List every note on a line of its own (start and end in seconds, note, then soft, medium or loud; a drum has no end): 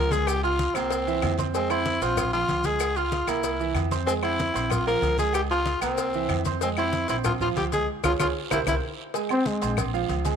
0.00 0.69 C#2 medium
0.00 0.13 A#4 loud
0.11 0.38 G#3 medium
0.11 0.29 G#4 loud
0.11 0.38 G#4 medium
0.11 0.38 G#5 medium
0.11 cowbell medium
0.11 high conga medium
0.11 short guiro medium
0.11 maracas medium
0.27 0.43 G4 loud
0.27 cowbell medium
0.27 low agogo loud
0.27 long guiro medium
0.27 claves medium
0.27 maracas medium
0.43 0.76 F4 medium
0.43 0.69 F4 medium
0.43 0.70 F5 medium
0.43 0.70 F6 medium
0.43 high conga soft
0.43 low agogo medium
0.43 maracas soft
0.59 cowbell medium
0.59 high conga medium
0.59 short guiro medium
0.59 maracas soft
0.75 1.19 C2 medium
0.75 1.01 A#3 medium
0.75 1.38 C4 loud
0.75 1.02 A#4 medium
0.75 1.01 A#5 medium
0.75 cowbell medium
0.75 high conga soft
0.75 low agogo loud
0.75 short guiro medium
0.75 claves medium
0.75 maracas medium
0.90 cowbell loud
0.90 high conga soft
0.90 low agogo medium
0.90 long guiro medium
0.90 maracas medium
1.07 1.33 E3 medium
1.07 1.33 E4 medium
1.07 1.33 E5 medium
1.07 high conga soft
1.07 maracas soft
1.22 1.96 F2 loud
1.22 cowbell medium
1.22 high conga medium
1.22 low timbale medium
1.22 low agogo loud
1.22 short guiro medium
1.22 claves medium
1.22 maracas soft
1.38 1.52 C4 medium
1.38 1.52 C5 medium
1.38 1.52 C6 medium
1.38 cowbell medium
1.38 high conga medium
1.38 short guiro medium
1.38 maracas medium
1.54 1.68 G#3 medium
1.54 1.72 C4 medium
1.54 1.68 G#4 medium
1.54 1.68 G#5 medium
1.54 cowbell medium
1.54 high conga soft
1.54 long guiro medium
1.54 maracas medium
1.70 1.96 C4 medium
1.70 2.04 E4 loud
1.70 1.96 C5 medium
1.70 1.97 C6 medium
1.70 high conga soft
1.70 low agogo loud
1.70 claves medium
1.70 maracas soft
1.86 cowbell medium
1.86 high conga medium
1.86 short guiro medium
1.86 maracas soft
2.01 2.45 A#1 medium
2.01 2.28 C4 medium
2.01 2.32 F4 loud
2.01 2.28 C5 medium
2.01 2.28 C6 medium
2.01 cowbell medium
2.01 low agogo medium
2.01 short guiro medium
2.01 maracas medium
2.17 cowbell loud
2.17 high conga soft
2.17 low conga medium
2.17 low agogo loud
2.17 long guiro medium
2.17 claves medium
2.17 maracas medium
2.33 2.60 F3 medium
2.33 2.67 F4 medium
2.33 2.60 F4 medium
2.33 2.60 F5 medium
2.33 high conga soft
2.33 low agogo medium
2.33 maracas soft
2.49 3.22 C#2 medium
2.49 cowbell medium
2.49 high conga medium
2.49 low agogo medium
2.49 short guiro medium
2.49 maracas soft
2.64 2.91 G#3 medium
2.64 2.91 G#4 medium
2.64 2.98 G#4 loud
2.64 2.91 G#5 medium
2.64 cowbell medium
2.64 high conga medium
2.64 short guiro medium
2.64 maracas medium
2.80 cowbell medium
2.80 high conga soft
2.80 low agogo loud
2.80 long guiro medium
2.80 claves medium
2.80 maracas medium
2.96 3.31 F4 medium
2.96 3.23 F4 medium
2.96 3.23 F5 medium
2.96 3.23 F6 medium
2.96 high conga soft
2.96 low agogo medium
2.96 maracas soft
3.12 cowbell medium
3.12 high conga medium
3.12 short guiro medium
3.12 maracas soft
3.27 3.72 C2 medium
3.27 3.54 A#3 medium
3.27 3.76 E4 medium
3.27 3.54 A#4 medium
3.27 3.54 A#5 medium
3.27 cowbell medium
3.27 high conga soft
3.27 low agogo loud
3.27 short guiro medium
3.27 claves medium
3.27 maracas medium
3.43 cowbell loud
3.43 high conga soft
3.43 low agogo medium
3.43 long guiro medium
3.43 maracas medium
3.60 3.86 E3 medium
3.60 3.86 E4 medium
3.60 3.86 E5 medium
3.60 high conga soft
3.60 maracas soft
3.74 4.49 F2 loud
3.74 cowbell medium
3.74 high conga medium
3.74 low agogo loud
3.74 short guiro medium
3.74 claves medium
3.74 maracas soft
3.91 4.04 C4 medium
3.91 4.05 C5 medium
3.91 4.05 C6 medium
3.91 cowbell medium
3.91 high conga medium
3.91 short guiro medium
3.91 maracas medium
4.06 4.20 G#3 medium
4.06 4.14 C4 loud
4.06 4.20 G#4 medium
4.06 4.20 G#5 medium
4.06 cowbell loud
4.06 high conga soft
4.06 long guiro medium
4.06 maracas medium
4.22 4.49 C4 medium
4.22 4.72 E4 loud
4.22 4.49 C5 medium
4.22 4.49 C6 medium
4.22 high conga soft
4.22 low agogo loud
4.22 claves medium
4.22 maracas soft
4.39 cowbell medium
4.39 high conga loud
4.39 short guiro medium
4.39 maracas soft
4.54 4.99 A#1 medium
4.54 4.81 C4 medium
4.54 4.81 C5 medium
4.54 4.81 C6 medium
4.54 cowbell medium
4.54 low agogo medium
4.54 short guiro medium
4.54 maracas medium
4.70 4.87 F4 medium
4.70 cowbell loud
4.70 high conga soft
4.70 low conga medium
4.70 low agogo loud
4.70 long guiro medium
4.70 claves medium
4.70 maracas medium
4.86 5.13 F3 medium
4.86 5.13 F4 medium
4.86 5.16 A#4 loud
4.86 5.13 F5 medium
4.86 high conga soft
4.86 low agogo medium
4.86 maracas soft
5.01 5.76 C#2 loud
5.01 cowbell medium
5.01 high conga medium
5.01 low agogo medium
5.01 short guiro medium
5.01 maracas soft
5.18 5.45 G#3 medium
5.18 5.33 G#4 loud
5.18 5.45 G#4 medium
5.18 5.45 G#5 medium
5.18 cowbell medium
5.18 high conga medium
5.18 short guiro medium
5.18 maracas medium
5.33 5.42 G4 loud
5.33 cowbell medium
5.33 high conga soft
5.33 low agogo loud
5.33 long guiro medium
5.33 claves medium
5.33 maracas medium
5.50 5.76 F4 medium
5.50 5.80 F4 loud
5.50 5.76 F5 medium
5.50 5.77 F6 medium
5.50 high conga soft
5.50 low agogo medium
5.50 maracas soft
5.66 cowbell medium
5.66 high conga medium
5.66 short guiro medium
5.66 maracas soft
5.81 6.26 C2 medium
5.81 6.08 A#3 medium
5.81 6.41 C4 loud
5.81 6.08 A#4 medium
5.81 6.08 A#5 medium
5.81 cowbell medium
5.81 high conga soft
5.81 low agogo loud
5.81 short guiro medium
5.81 claves medium
5.81 maracas medium
5.97 cowbell loud
5.97 high conga soft
5.97 low agogo medium
5.97 long guiro medium
5.97 maracas medium
6.13 6.40 E3 medium
6.13 6.40 E4 medium
6.13 6.40 E5 medium
6.13 high conga soft
6.13 maracas soft
6.29 7.03 F2 loud
6.29 cowbell medium
6.29 high conga medium
6.29 low agogo loud
6.29 short guiro medium
6.29 claves medium
6.29 maracas soft
6.45 6.59 C4 medium
6.45 6.59 C5 medium
6.45 6.59 C6 medium
6.45 cowbell medium
6.45 high conga medium
6.45 short guiro medium
6.45 maracas medium
6.61 6.75 G#3 medium
6.61 6.69 C4 medium
6.61 6.75 G#4 medium
6.61 6.75 G#5 medium
6.61 cowbell medium
6.61 high conga soft
6.61 long guiro medium
6.61 maracas medium
6.77 7.03 C4 medium
6.77 7.07 E4 loud
6.77 7.04 C5 medium
6.77 7.04 C6 medium
6.77 high conga soft
6.77 low agogo loud
6.77 claves medium
6.77 maracas soft
6.93 cowbell medium
6.93 high conga medium
6.93 short guiro medium
6.93 maracas soft
7.08 7.53 A#1 medium
7.08 7.35 C4 medium
7.08 7.16 E4 medium
7.08 7.35 C5 medium
7.08 7.35 C6 medium
7.08 cowbell medium
7.08 low agogo medium
7.08 short guiro medium
7.08 maracas medium
7.24 7.32 F4 medium
7.24 cowbell loud
7.24 high conga soft
7.24 low conga medium
7.24 low agogo loud
7.24 long guiro medium
7.24 claves medium
7.24 maracas medium
7.41 7.67 F3 medium
7.41 7.67 F4 medium
7.41 7.48 F4 medium
7.41 7.67 F5 medium
7.41 high conga soft
7.41 low conga medium
7.41 low agogo medium
7.41 maracas soft
7.56 7.85 C#2 medium
7.56 7.64 G4 medium
7.56 cowbell medium
7.56 high conga medium
7.56 low agogo medium
7.56 short guiro medium
7.56 maracas soft
7.72 7.86 G#3 medium
7.72 7.87 G#4 medium
7.72 7.86 G#4 medium
7.72 7.86 G#5 medium
7.72 cowbell medium
7.72 high conga medium
7.72 short guiro medium
7.72 maracas medium
8.03 8.15 C#2 medium
8.03 8.14 F4 loud
8.03 8.12 F4 medium
8.03 8.14 G#4 loud
8.03 8.14 C#5 medium
8.03 cowbell medium
8.03 high conga loud
8.03 high timbale medium
8.03 long guiro loud
8.03 claves loud
8.03 maracas medium
8.19 8.31 C#2 medium
8.19 8.27 F4 medium
8.19 8.30 F4 loud
8.19 8.30 G#4 medium
8.19 8.30 C#5 loud
8.19 cowbell medium
8.19 high conga loud
8.19 high timbale medium
8.19 long guiro loud
8.19 claves medium
8.19 maracas loud
8.51 8.63 C2 loud
8.51 8.60 E4 medium
8.51 8.61 G4 loud
8.51 8.61 A#4 loud
8.51 8.61 C5 loud
8.51 cowbell loud
8.51 high conga medium
8.51 high timbale loud
8.51 long guiro loud
8.51 claves loud
8.51 maracas loud
8.67 8.79 C2 loud
8.67 8.75 E4 medium
8.67 8.77 G4 medium
8.67 8.77 A#4 medium
8.67 8.77 C5 medium
8.67 cowbell medium
8.67 high conga loud
8.67 high timbale medium
8.67 long guiro medium
8.67 claves loud
8.67 maracas medium
9.14 9.27 G#3 medium
9.14 9.27 G#4 medium
9.14 9.28 G#5 medium
9.14 cowbell loud
9.14 high conga soft
9.14 long guiro medium
9.14 maracas medium
9.29 9.56 C4 medium
9.29 9.48 C4 medium
9.29 9.56 C5 medium
9.29 9.57 C6 medium
9.29 high conga soft
9.29 low agogo loud
9.29 claves medium
9.29 maracas soft
9.46 9.78 G#3 medium
9.46 cowbell medium
9.46 high conga medium
9.46 short guiro medium
9.46 maracas soft
9.62 10.06 A#1 medium
9.62 9.88 C4 medium
9.62 9.88 C5 medium
9.62 9.88 C6 medium
9.62 cowbell medium
9.62 low agogo medium
9.62 short guiro medium
9.62 maracas medium
9.77 cowbell loud
9.77 high conga soft
9.77 low conga medium
9.77 low agogo loud
9.77 long guiro medium
9.77 claves medium
9.77 maracas medium
9.94 10.20 F3 medium
9.94 10.20 F4 medium
9.94 10.20 F5 medium
9.94 high conga soft
9.94 low agogo medium
9.94 maracas soft
10.09 10.36 C#2 loud
10.09 cowbell medium
10.09 high conga medium
10.09 low agogo medium
10.09 short guiro medium
10.09 maracas soft
10.25 10.36 G#3 medium
10.25 10.36 G#4 medium
10.25 10.36 G#5 medium
10.25 cowbell medium
10.25 high conga medium
10.25 short guiro medium
10.25 maracas medium